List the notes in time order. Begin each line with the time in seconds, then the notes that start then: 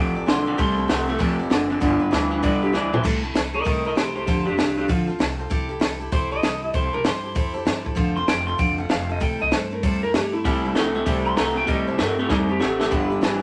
Already playing: F2 C3 F3 A3 C4 A4 D5
0.00 A1 G5
0.15 C4 A4 D5
0.26 B1 F2 D3 A3 C4 A4 D5 C6, snare, open hi-hat
0.46 F2 D3 C4 A4 D5
0.58 C2 C3 G3 A3 C4 E4 A4 C6, kick, open hi-hat
0.77 A3 C4 E4 A4
0.88 C2 C3 A3 C4 E4 A4, snare, open hi-hat
1.08 C3 A3 C4 E4 A4
1.19 F1 F2 C3 F3 A3 C4 A4 D5, kick, open hi-hat
1.39 C4 A4 D5
1.50 F#1 F2 D3 A3 C4 A4 D5, snare, open hi-hat
1.70 F2 D3 C4 A4 D5
1.80 G1 G2 D3 G3 B3 D4 E4 B4, kick, open hi-hat
2.00 G1 D4 E4 B4
2.11 D2 G2 E3 B3 D4 E4 B4, snare, open hi-hat
2.31 G2 E3 D4 E4 B4
2.43 C2 G2 D3 G3 B3 D4 E4 B4 D5, kick, open hi-hat
2.62 D4 E4 G4 B4
2.73 D2 G2 E3 B3 D4 E4 B4 D5, snare
2.92 G2 E3 D4 E4 B4 C5, floor tom
3.03 C2 C3 G3 A3 C4 E4 A4, kick, crash
3.23 A3 C4 E4 A4
3.34 C2 A3 C4 E4 A4, snare, open hi-hat
3.53 A3 C4 E4 A4 A#4 D#5
3.64 C2 C3 G3 A3 C4 E4 A4 A#4 D#5, kick, open hi-hat
3.85 A3 C4 E4 A4 A#4 D#5
3.95 C2 A3 C4 E4 G4 A4 C5, snare, open hi-hat
4.15 A3 C4 E4 G4 A4 C5
4.26 F1 D3 F3 C4 F4 G4 A4 C5, kick, open hi-hat
4.46 F1 C4 D4 F4 G4 A4 C5
4.57 C2 C4 D4 F4 G4 A4 C5, snare, open hi-hat
4.77 C4 D4 F4 G4 A4 C5
4.88 A1 D3 F3 C4 F4 A4 C5, kick, open hi-hat
5.07 C4 F4 A4 C5
5.19 C2 C4 F4 A4 C5, snare, open hi-hat
5.39 C4 F4 A4 C5
5.50 C2 C4 E4 G4 A4, kick, open hi-hat
5.69 E4 G4 A4
5.80 C2 C4 E4 G4 A4, snare, open hi-hat
6.00 E4 G4 A4
6.12 C2 C4 E4 G4 A4 C5, kick, open hi-hat
6.31 E4 G4 A4 D#5
6.42 C2 C4 E4 G4 A4, snare, open hi-hat
6.62 E4 G4 A4
6.74 C2 C4 E4 G4 A4 C5, kick, open hi-hat
6.93 C2 E4 G4 A4 A#4
7.04 G2 C4 E4 G4 A4 C5, snare, open hi-hat
7.24 E4 G4 A4
7.35 F2 C4 E4 G4 A4, kick, open hi-hat
7.54 E4 G4 A4
7.65 G2 C4 E4 G4 A4, snare, open hi-hat
7.85 E4 G4 A4, kick
7.95 F1 D3 F3 C4 F4 A4 C5, kick, open hi-hat
8.16 C4 F4 A4 C5 C6
8.28 F1 C4 F4 A4 C5 G5, snare, open hi-hat
8.47 C4 F4 A4 C5 C6
8.58 F1 D3 F3 C4 F4 A4 C5 G5, kick, open hi-hat
8.78 C4 F4 A4 C5 F#5
8.89 F1 C4 F4 A4 C5 F5, snare, open hi-hat
9.09 C4 F4 A4 C5 D#5
9.20 C2 C3 G3 A3 C4 E4 A4 G5, kick, open hi-hat
9.40 C2 A3 C4 E4 A4 D#5
9.51 G2 A3 C4 E4 A4 C5, snare, open hi-hat
9.71 A3 C4 E4 A4 A#4
9.83 F2 C3 G3 A3 C4 E4 A4 C5, kick, open hi-hat
10.03 A3 C4 E4 A4 A#4
10.14 G2 A3 C4 E4 G4 A4, snare, open hi-hat
10.33 A3 C4 E4 A4
10.45 C2 C3 G3 A3 C4 E4 A4, kick, open hi-hat
10.65 A3 C4 E4 A4
10.75 C2 C3 A3 C4 E4 A4, snare, open hi-hat
10.95 C3 A3 C4 E4 A4
11.06 C2 C3 G3 A3 C4 E4 A4, kick, open hi-hat
11.25 A3 C4 E4 A4 C6
11.36 C2 C3 A3 C4 E4 A4 A#5, snare, open hi-hat
11.56 C3 A3 C4 E4 A4 G5
11.66 C2 C3 G3 A3 C4 E4 A4 D#5, kick, open hi-hat
11.87 C2 A3 C4 E4 A4 C5
11.98 G2 C3 A3 C4 E4 A4 A#4, snare, open hi-hat
12.18 C3 A3 C4 E4 G4 A4
12.29 F2 C3 G3 A3 C4 D#4 E4 A4, kick, snare
12.49 A3 C4 E4 G4 A4
12.59 A1 C3 A3 C4 E4 A4, snare
12.79 C3 A3 C4 E4 A4, snare
12.91 G1 G2 D3 G3 B3 D4 E4 B4, kick, open hi-hat
13.10 D4 E4 B4
13.21 G1 G2 E3 B3 D4 E4 B4, snare, open hi-hat